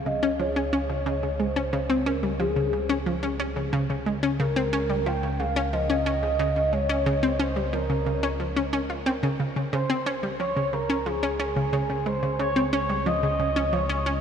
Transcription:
Already playing: synth drone C#2
0.06 synth arpeggio sound C#3, analog synth lead D#5
0.23 synth arpeggio sound C#4
0.39 synth arpeggio sound F3, analog synth lead C#5
0.56 synth arpeggio sound C#4
0.73 synth arpeggio sound C#4
0.89 synth arpeggio sound C#3
1.06 synth arpeggio sound C#3
1.23 synth arpeggio sound C#3
1.40 synth arpeggio sound G#3, analog synth lead C5
1.56 synth arpeggio sound C#4
1.73 synth arpeggio sound C#3
1.90 synth arpeggio sound C4
2.06 synth arpeggio sound C#4, analog synth lead A#4
2.23 synth arpeggio sound G3
2.40 synth arpeggio sound F3, analog synth lead G#4
2.56 synth arpeggio sound C#3
2.73 synth arpeggio sound C#3
2.89 synth arpeggio sound C#4
3.06 synth arpeggio sound F3
3.23 synth arpeggio sound C#4
3.40 synth arpeggio sound C#4
3.56 synth arpeggio sound C#3
3.73 synth arpeggio sound C#3
3.90 synth arpeggio sound C#3
4.06 synth arpeggio sound G#3
4.23 synth arpeggio sound C#4
4.40 synth arpeggio sound C#3, analog synth lead A#4
4.56 synth arpeggio sound C4
4.73 synth arpeggio sound C#4
4.90 synth arpeggio sound G3
5.06 synth arpeggio sound F3, analog synth lead G5
5.23 synth arpeggio sound C#3
5.40 synth arpeggio sound C#3, analog synth lead F5
5.56 synth arpeggio sound C#4
5.73 synth arpeggio sound F3, analog synth lead D#5
5.90 synth arpeggio sound C#4
6.06 synth arpeggio sound C#4
6.23 synth arpeggio sound C#3
6.39 synth arpeggio sound C#3
6.56 synth arpeggio sound C#3
6.73 synth arpeggio sound G#3, analog synth lead C#5
6.89 synth arpeggio sound C#4
7.06 synth arpeggio sound C#3
7.23 synth arpeggio sound C4
7.39 synth arpeggio sound C#4, analog synth lead C5
7.56 synth arpeggio sound G3
7.73 synth arpeggio sound F3, analog synth lead A#4
7.90 synth arpeggio sound C#3
8.06 synth arpeggio sound C#3
8.23 synth arpeggio sound C#4
8.40 synth arpeggio sound F3
8.56 synth arpeggio sound C#4
8.73 synth arpeggio sound C#4
8.90 synth arpeggio sound F4
9.06 synth arpeggio sound C4
9.23 synth arpeggio sound C#3
9.40 synth arpeggio sound C#3
9.56 synth arpeggio sound C#3
9.73 synth drone C#2, synth arpeggio sound C#3, analog synth lead C5
9.90 synth arpeggio sound C4
10.06 synth arpeggio sound C#4
10.23 synth arpeggio sound G3
10.40 synth arpeggio sound F3, analog synth lead C#5
10.56 synth arpeggio sound C#3
10.73 synth arpeggio sound C#3, analog synth lead A#4
10.90 synth arpeggio sound C#4
11.06 synth arpeggio sound F3, analog synth lead G#4
11.23 synth arpeggio sound C#4
11.40 synth arpeggio sound C#4
11.56 synth arpeggio sound C#3
11.73 synth arpeggio sound C#3
11.90 synth arpeggio sound C#3
12.06 synth arpeggio sound G#3, analog synth lead C5
12.23 synth arpeggio sound C#3
12.39 synth arpeggio sound C#3, analog synth lead C#5
12.56 synth arpeggio sound C4
12.73 synth arpeggio sound C#4, analog synth lead C#5
12.90 synth arpeggio sound G3
13.06 synth arpeggio sound F3, analog synth lead D#5
13.23 synth arpeggio sound C#3
13.39 synth arpeggio sound C#3
13.56 synth arpeggio sound C#4
13.73 synth arpeggio sound F3, analog synth lead C#5
13.89 synth arpeggio sound C#4
14.06 synth arpeggio sound C#4

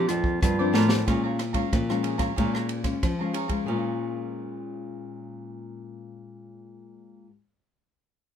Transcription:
Already playing: nylon-string guitar A#2 F3 C4 D4, clarinet G4
0.08 nylon-string guitar F2, clarinet F4, muted cavaquinho stroke, cross-stick, closed hi-hat
0.24 kick
0.42 nylon-string guitar G2 F3 C4 D4, clarinet F4, kick, cross-stick, closed hi-hat
0.59 nylon-string guitar F3 C4 D4, cavaquinho A#4 C5 D5
0.73 nylon-string guitar A2, cavaquinho D4 A#4 C5 D5, snare
0.88 cavaquinho A#4 C5 D5, snare
1.07 nylon-string guitar A#2 G#3 C#4 F4, cavaquinho G#4 C#5 F5 A#5, kick, cross-stick, ride
1.23 cavaquinho C#5 F5 A#5
1.38 muted cavaquinho stroke, cross-stick, ride
1.53 nylon-string guitar G#3 C#4 F4, cavaquinho C#5 F5 A#5, kick, ride
1.72 nylon-string guitar A#2 F3, kick, cross-stick, ride
1.89 nylon-string guitar G#3 C#4 F4, cavaquinho C#5 F5 A#5, cross-stick
2.03 cavaquinho G#4 C#5 F5 A#5, ride
2.18 nylon-string guitar G#3 C#4 F4, cavaquinho C#5 F5 A#5, kick, cross-stick, ride
2.36 nylon-string guitar A#2 G#3 C#4 F4, cavaquinho G#4 C#5 F5 A#5, kick, ride
2.54 cavaquinho C#5 F5 A#5, cross-stick
2.68 muted cavaquinho stroke, ride
2.84 nylon-string guitar G#3 C#4 F4, kick, cross-stick, ride
3.03 nylon-string guitar F3, kick, cross-stick, ride
3.19 nylon-string guitar G#3 C#4 F4, cavaquinho C#5 F5 A#5
3.33 cavaquinho G#4 C#5 F5 A#5, ride
3.48 nylon-string guitar G#3 C#4 F4, cavaquinho C#5 F5 A#5, kick, ride
3.64 nylon-string guitar A#2, cavaquinho G#4 C#5
3.68 nylon-string guitar A#2 G#3, cavaquinho F5 A#5
3.74 nylon-string guitar C#4
3.79 nylon-string guitar F4

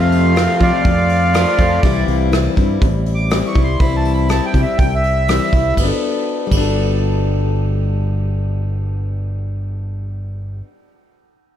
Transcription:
Already playing: steel-string acoustic guitar F2 C3 F3 A3 C4 F4, fingered electric bass F2
0.01 accordion F5
0.12 open hi-hat
0.35 clean electric guitar F2 C3, steel-string acoustic guitar F3 A3 C4 F4, cross-stick, open hi-hat
0.60 fingered electric bass F3, clean electric guitar F3, steel-string acoustic guitar A3 C4 F4, accordion D5 F5, kick, open hi-hat
0.85 fingered electric bass F2, kick, open hi-hat
1.09 open hi-hat
1.34 steel-string acoustic guitar F3 A3 C4 F4, cross-stick, open hi-hat
1.58 fingered electric bass F2, steel-string acoustic guitar F3 A3 C4 F4, kick, open hi-hat
1.83 fingered electric bass C2, steel-string acoustic guitar C3 E3 G3 C4 E4, kick, open hi-hat
2.08 fingered electric bass C2, open hi-hat
2.32 steel-string acoustic guitar E3 G3 C4 E4, cross-stick, open hi-hat
2.56 fingered electric bass G2, steel-string acoustic guitar G3 C4 E4, kick, open hi-hat
2.81 fingered electric bass A1, kick, open hi-hat
3.06 open hi-hat
3.15 accordion D6
3.30 steel-string acoustic guitar E3 G3 C4 E4, cross-stick, open hi-hat
3.47 accordion C#6
3.55 fingered electric bass C2, steel-string acoustic guitar G3 C4 E4, kick, open hi-hat
3.64 accordion C6
3.80 fingered electric bass C2, steel-string acoustic guitar C3 E3 G3 C4 E4, accordion B5, kick, open hi-hat
3.97 accordion A5
4.05 open hi-hat
4.13 accordion B5
4.28 steel-string acoustic guitar E3 G3 C4 E4, accordion A5, cross-stick, open hi-hat
4.45 accordion G5
4.53 fingered electric bass C3, steel-string acoustic guitar G3 C4 E4, kick, open hi-hat
4.62 accordion E5
4.78 fingered electric bass C2, accordion G5, kick, open hi-hat
4.95 accordion E5
5.04 open hi-hat
5.28 steel-string acoustic guitar E3 G3 C4 E4, cross-stick, open hi-hat
5.53 fingered electric bass C2, steel-string acoustic guitar G3 C4 E4, kick, open hi-hat
5.74 fingered electric bass G1, steel-string acoustic guitar G3, kick, ride
5.80 steel-string acoustic guitar B3
5.84 steel-string acoustic guitar D4 A4
6.47 steel-string acoustic guitar G3
6.51 fingered electric bass G1, steel-string acoustic guitar B3, kick, ride
6.57 steel-string acoustic guitar D4
6.61 steel-string acoustic guitar A4

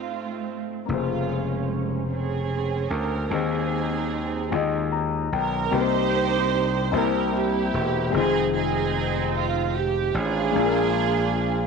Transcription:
Already playing: grand piano A3 D#4 F4 C5, string section A3 C4 F4
0.86 slap bass F1, grand piano C#3 A#3, string section F4
0.90 string section G#3 C#4, grand piano G#4 C5
2.11 string section C4 C#4 G#4
2.90 slap bass D2, string section A#4
3.30 slap bass D#2, grand piano D#3 G#3 C4 D#4 C5, string section C4 D#4 G#4
4.50 slap bass D#2, grand piano D#3 G#3 D#4 F4 D#5
4.92 grand piano A#5
5.32 slap bass B1, string section A#4, grand piano G5
5.71 slap bass C2, grand piano C3 A#3 C4 D#4 G4, string section D#4 G4 C5
5.75 grand piano B4
5.81 grand piano C5
6.91 slap bass C2, grand piano C3 A#3 C4 E4 G4 C5
6.95 string section E4 G4 A#4
7.35 string section A#3 E4 G4
7.74 slap bass E1
8.10 slap bass F1, grand piano D#3 G#3 C4
8.16 string section C4 D#4 G#4, grand piano F4 C5
8.55 string section C4 D#4 G#4
9.37 string section F4
9.76 string section G4
10.14 slap bass A1, string section D4 F4 G#4
10.52 slap bass A#1, grand piano G#3 A#3 D4
10.56 grand piano A#2 F4 G#4
10.66 grand piano A#4

